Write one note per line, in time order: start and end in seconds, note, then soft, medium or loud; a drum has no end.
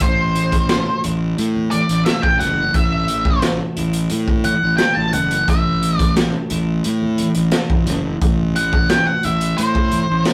0.00 0.85 A1 loud
0.00 2.74 A2 medium
0.00 0.36 E3 medium
0.00 0.70 A3 medium
0.00 1.37 C4 medium
0.00 1.04 E4 medium
0.00 1.01 C5 medium
0.00 kick loud
0.00 closed hi-hat medium
0.35 1.72 E3 medium
0.35 closed hi-hat medium
0.52 kick medium
0.52 closed hi-hat medium
0.52 high conga medium
0.69 2.05 A3 medium
0.69 snare loud
0.69 closed hi-hat medium
1.04 1.33 A1 medium
1.04 3.76 E4 medium
1.04 closed hi-hat medium
1.04 high conga medium
1.04 low conga medium
1.37 1.81 A2 medium
1.37 2.39 C4 medium
1.37 closed hi-hat medium
1.56 high conga medium
1.71 3.08 E3 medium
1.71 2.05 D5 medium
1.71 closed hi-hat medium
1.71 high conga medium
1.89 2.04 A1 medium
1.89 closed hi-hat medium
2.05 3.42 A3 medium
2.05 2.24 E5 medium
2.05 snare loud
2.05 closed hi-hat medium
2.22 2.38 A1 medium
2.22 2.39 G5 loud
2.22 kick medium
2.39 2.69 F#1 medium
2.39 4.09 C4 medium
2.39 2.76 F#5 medium
2.39 snare soft
2.39 closed hi-hat medium
2.39 high conga medium
2.74 3.59 A1 loud
2.74 5.47 A2 medium
2.74 3.40 E5 medium
2.74 kick loud
2.74 closed hi-hat medium
3.08 4.43 E3 medium
3.08 closed hi-hat medium
3.25 kick medium
3.25 high conga medium
3.25 low conga medium
3.42 4.78 A3 medium
3.42 snare loud
3.42 closed hi-hat medium
3.76 4.06 A1 medium
3.76 6.50 E4 medium
3.76 closed hi-hat medium
3.76 high conga medium
3.76 low conga medium
3.93 closed hi-hat medium
4.10 4.54 A2 medium
4.10 5.12 C4 medium
4.10 closed hi-hat medium
4.28 kick medium
4.28 high conga medium
4.44 5.81 E3 medium
4.44 4.77 F#5 medium
4.44 closed hi-hat medium
4.44 high conga medium
4.63 4.77 A1 medium
4.77 6.15 A3 medium
4.77 4.95 G5 medium
4.77 snare loud
4.77 closed hi-hat medium
4.95 5.11 A1 medium
4.95 5.12 A5 loud
5.13 5.42 F#1 loud
5.13 6.84 C4 medium
5.13 5.49 F#5 medium
5.13 closed hi-hat medium
5.13 high conga medium
5.13 low conga medium
5.31 closed hi-hat medium
5.47 6.32 A1 loud
5.47 8.22 A2 medium
5.47 5.98 E5 medium
5.47 kick loud
5.47 closed hi-hat medium
5.82 7.19 E3 medium
5.82 closed hi-hat medium
5.98 6.14 D5 medium
5.98 kick medium
5.98 closed hi-hat medium
5.98 high conga medium
6.16 7.53 A3 medium
6.16 snare loud
6.16 closed hi-hat medium
6.50 6.79 A1 medium
6.50 9.24 E4 medium
6.50 closed hi-hat medium
6.50 high conga medium
6.50 low conga medium
6.84 7.28 A2 medium
6.84 7.88 C4 medium
6.84 closed hi-hat medium
7.02 high conga medium
7.18 8.57 E3 medium
7.18 closed hi-hat medium
7.18 high conga medium
7.35 7.50 A1 medium
7.35 closed hi-hat medium
7.52 8.90 A3 medium
7.52 snare loud
7.52 closed hi-hat medium
7.70 7.84 A1 medium
7.70 kick medium
7.87 8.15 F#1 loud
7.87 9.59 C4 medium
7.87 snare soft
7.87 closed hi-hat medium
7.87 high conga medium
7.87 low conga medium
8.21 9.06 A1 loud
8.21 10.33 A2 medium
8.21 kick loud
8.21 closed hi-hat medium
8.56 9.92 E3 medium
8.56 8.90 F#5 medium
8.56 closed hi-hat medium
8.73 kick medium
8.73 high conga medium
8.90 10.26 A3 medium
8.90 9.06 G5 loud
8.90 snare loud
8.90 closed hi-hat medium
9.07 9.25 F#5 loud
9.23 9.53 A1 medium
9.23 10.33 E4 medium
9.23 9.60 E5 medium
9.23 closed hi-hat medium
9.23 high conga medium
9.23 low conga medium
9.41 closed hi-hat medium
9.57 10.01 A2 loud
9.57 10.33 C4 medium
9.57 10.23 C5 medium
9.57 closed hi-hat medium
9.75 kick medium
9.75 high conga medium
9.92 10.33 E3 medium
9.92 closed hi-hat medium
9.92 high conga medium
10.10 10.24 A1 medium
10.25 10.33 A3 medium
10.25 snare loud
10.25 closed hi-hat medium